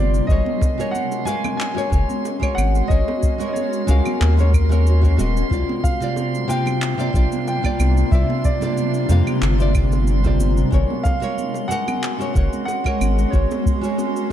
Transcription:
Already playing: analog synth bass G1, nylon-string guitar C3 A#3 F4 D5, ambient pad C3 G3 A#3 D4 F4, grand piano D5, synth texture C6
0.14 cabasa
0.27 analog synth bass G#1, nylon-string guitar G#3 F#4 A#4, ambient pad G#3 C#4 F#4, grand piano D#5, kick, high bongo, cabasa
0.32 nylon-string guitar C#5
0.46 high conga
0.61 kick, high bongo, cabasa
0.78 nylon-string guitar G#3 F#4 A#4 C#5, cabasa
0.91 grand piano F#5, high conga, cabasa
1.12 high bongo, cabasa
1.25 nylon-string guitar G#3 F#4 A#4 F5, grand piano G#5, cabasa
1.44 high bongo, high conga, low conga, cabasa, claves
1.57 grand piano G#5, clap, cabasa
1.75 nylon-string guitar G#3 F#4 A#4 C#5, cabasa
1.90 analog synth bass F#1, nylon-string guitar G#3 F#4 A#4 C#5, kick, high bongo, cabasa
2.10 high conga, cabasa
2.25 high bongo, cabasa
2.40 nylon-string guitar G#3 F#4 A#4 C#5, kick, cabasa, claves
2.55 analog synth bass G#1, grand piano F#5, cabasa, claves
2.59 high conga
2.75 high bongo, cabasa
2.88 analog synth bass G#1, nylon-string guitar G#3 F#4 A#4 C#5, grand piano D#5, kick, cabasa
3.08 high bongo, high conga
3.23 kick, cabasa
3.38 nylon-string guitar G#3 F#4 A#4 C#5, cabasa
3.48 grand piano D#5
3.53 grand piano C#5, high bongo, high conga, cabasa
3.73 cabasa
3.87 analog synth bass C#2, nylon-string guitar G#3 F#4 A#4 F5, high bongo, cabasa
4.06 high conga, low conga, cabasa, claves
4.20 analog synth bass D#2, grand piano A#4, clap, cabasa
4.37 nylon-string guitar G#3 F#4 A#4 C#5, high bongo, cabasa
4.54 kick, cabasa, claves
4.69 nylon-string guitar G#3 F#4 A#4 C#5, high bongo, high conga, cabasa
4.87 cabasa
5.02 nylon-string guitar G#3 F#4 A#4 C#5, kick, cabasa
5.17 analog synth bass D#1, nylon-string guitar G#3 F#4 A#4 D#5, high bongo, high conga, cabasa
5.37 cabasa
5.50 analog synth bass C2, nylon-string guitar C3 A#3 F4 D5, ambient pad C3 G3 A#3 D4 F4, kick, cabasa
5.69 high conga
5.84 grand piano F5, kick, high bongo, cabasa
6.00 nylon-string guitar C3 A#3 F4 D5, cabasa
6.16 high bongo, high conga, cabasa
6.35 cabasa
6.48 nylon-string guitar C3 A#3 F4 F5, grand piano G5, cabasa
6.66 high bongo, high conga, low conga, cabasa, claves
6.82 clap, cabasa
6.98 nylon-string guitar C3 A#3 F4 D5, high bongo, cabasa
7.13 analog synth bass A#1, nylon-string guitar C3 A#3 F4 D5, kick, cabasa
7.32 high conga, cabasa
7.48 grand piano G5, high bongo, cabasa
7.63 nylon-string guitar C3 A#3 F4 D5, kick, cabasa, claves
7.79 analog synth bass C2, high bongo, high conga, cabasa, claves
7.97 cabasa
8.11 analog synth bass C2, nylon-string guitar C3 A#3 F4 D5, grand piano E5, kick, cabasa
8.30 high bongo, high conga
8.45 grand piano D5, kick, cabasa
8.61 nylon-string guitar C3 A#3 F4 D5, high bongo, cabasa
8.77 high conga, cabasa
8.94 cabasa
9.09 analog synth bass F2, nylon-string guitar C3 A#3 F4 F5, high bongo, cabasa
9.27 high conga, low conga, cabasa, claves
9.42 analog synth bass G1, clap, high bongo, cabasa
9.58 nylon-string guitar C3 A#3 F4 D5, cabasa
9.74 nylon-string guitar C3 A#3 F4 D5, kick, cabasa, claves
9.92 high bongo, high conga, cabasa
10.07 cabasa
10.24 nylon-string guitar C3 A#3 F4 D5, kick, high bongo, cabasa
10.40 analog synth bass G1, high conga, cabasa
10.57 cabasa
10.71 analog synth bass G#1, nylon-string guitar G#3 F#4 A#4 C#5, ambient pad G#3 C#4 F#4, kick, high bongo, cabasa
10.90 high conga
11.03 grand piano F5, kick, high bongo, cabasa
11.20 nylon-string guitar G#3 F#4 A#4 C#5, cabasa
11.38 high conga, cabasa
11.54 high bongo, cabasa
11.68 nylon-string guitar G#3 F#4 A#4, grand piano F#5, cabasa
11.72 nylon-string guitar F#5
11.88 high bongo, high conga, low conga, cabasa, claves
12.03 clap, cabasa
12.19 nylon-string guitar G#3 F#4 A#4 C#5, cabasa
12.34 analog synth bass F#1, nylon-string guitar G#3 F#4 A#4 C#5, kick, high bongo, cabasa
12.53 high conga, cabasa
12.65 grand piano F#5, high bongo, cabasa
12.84 nylon-string guitar G#3 F#4 A#4 C#5, kick, cabasa, claves
13.01 analog synth bass G#1, high conga, cabasa, claves
13.18 high bongo, cabasa
13.30 analog synth bass G#1, nylon-string guitar G#3 F#4 A#4, grand piano C#5, kick, cabasa
13.36 nylon-string guitar C#5
13.51 high bongo, high conga, cabasa
13.66 kick, cabasa
13.81 nylon-string guitar G#3 F#4 A#4 C#5, cabasa
13.98 high bongo, high conga, cabasa
14.16 cabasa

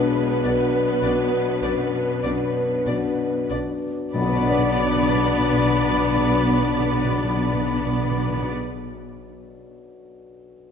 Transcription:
Already playing: grand piano B1 B3 D4 F#4, timpani B2, harp B2 B3 D4 F#4, cello section B2, french horn section G#3 D4, viola section B3, violin section B4, flute B4
0.44 double bass section B1, french horn section F#3, grand piano B3 D4 F#4, violin section D5
1.03 double bass section B1, grand piano B3 D4 F#4, violin section D5
1.63 double bass section B1, grand piano F#2, violin section D5
2.24 double bass section B1, grand piano B3 D4 F#4, violin section D5
2.87 double bass section B1, grand piano B3 D4 F#4, violin section D5
3.50 double bass section B1, grand piano B3 D4 F#4, violin section D5
4.13 double bass section B1, grand piano B1, timpani B2, harp B2, french horn section F#3 D4, viola section B3, cello section B3, violin section B4 D5, flute B5
4.20 timpani B2, grand piano B2, harp B3
4.26 timpani B2, grand piano B3, harp D4
4.32 timpani B2, grand piano D4, harp F#4
4.38 timpani B2, harp D5
4.43 timpani B2, grand piano F#4
4.50 timpani B2, grand piano D5
4.58 timpani B2
4.65 timpani B2
4.71 timpani B2
4.78 timpani B2
4.84 timpani B2
4.90 timpani B2
4.96 timpani B2
5.02 timpani B2
5.09 timpani B2
5.14 timpani B2
5.21 timpani B2
5.27 timpani B2
5.34 timpani B2
5.40 timpani B2
5.46 timpani B2
5.53 timpani B2
5.59 timpani B2
5.65 timpani B2
5.71 timpani B2
5.78 timpani B2
5.85 timpani B2
5.91 timpani B2
5.97 timpani B2
6.04 timpani B2
6.10 timpani B2
6.16 timpani B2
6.22 timpani B2
6.29 timpani B2
6.36 timpani B2
6.43 timpani B2
6.49 timpani B2
6.56 timpani B2
6.62 timpani B2
6.68 timpani B2
6.74 timpani B2
6.80 timpani B2
6.86 timpani B2
6.92 timpani B2
6.98 timpani B2
7.05 timpani B2
7.11 timpani B2
7.17 timpani B2
7.24 timpani B2
7.30 timpani B2
7.36 timpani B2
7.42 timpani B2
7.48 timpani B2
7.54 timpani B2
7.60 timpani B2
7.66 timpani B2
7.73 timpani B2
7.80 timpani B2
7.86 timpani B2
7.93 timpani B2
7.99 timpani B2
8.05 timpani B2
8.11 timpani B2
8.17 timpani B2
8.23 timpani B2
8.30 timpani B2
8.36 timpani B2
8.42 timpani B2

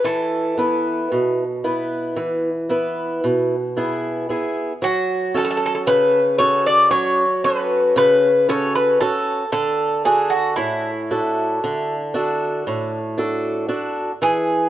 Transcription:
0.04 steel-string acoustic guitar E3, bouzouki A4
0.58 steel-string acoustic guitar B3 E4 B4
1.12 steel-string acoustic guitar B2
1.64 steel-string acoustic guitar B3 E4 B4
2.16 steel-string acoustic guitar E3
2.69 steel-string acoustic guitar B3 E4 B4
3.24 steel-string acoustic guitar B2
3.77 steel-string acoustic guitar B3 E4 G#4
4.29 steel-string acoustic guitar B3 E4 G#4
4.82 steel-string acoustic guitar F#3, bouzouki F#4
5.34 steel-string acoustic guitar C#4 F#4 A4, bouzouki A4
5.45 bouzouki A4
5.51 bouzouki A4
5.57 bouzouki A4
5.66 bouzouki A4
5.75 bouzouki A4
5.87 steel-string acoustic guitar C#3, bouzouki B4
6.38 steel-string acoustic guitar C#4 F#4 A4, bouzouki C#5
6.66 bouzouki D5
6.91 steel-string acoustic guitar F#3, bouzouki C#5
7.44 steel-string acoustic guitar C#4 F#4 A4, bouzouki B4
7.96 steel-string acoustic guitar C#3, bouzouki B4
8.49 steel-string acoustic guitar C#4 F#4 A4, bouzouki C#5
8.75 bouzouki B4
9.00 steel-string acoustic guitar C#4 F#4 A4, bouzouki A4
9.52 steel-string acoustic guitar D3, bouzouki A4
10.05 steel-string acoustic guitar D4 F#4 A4, bouzouki G#4
10.30 bouzouki F#4
10.56 steel-string acoustic guitar A2, bouzouki E4
11.11 steel-string acoustic guitar D4 F#4 A4
11.64 steel-string acoustic guitar D3
12.14 steel-string acoustic guitar D4 F#4 A4
12.67 steel-string acoustic guitar A2
13.18 steel-string acoustic guitar D4 F#4 A4
13.69 steel-string acoustic guitar D4 F#4 A4
14.22 steel-string acoustic guitar E3, bouzouki G#4

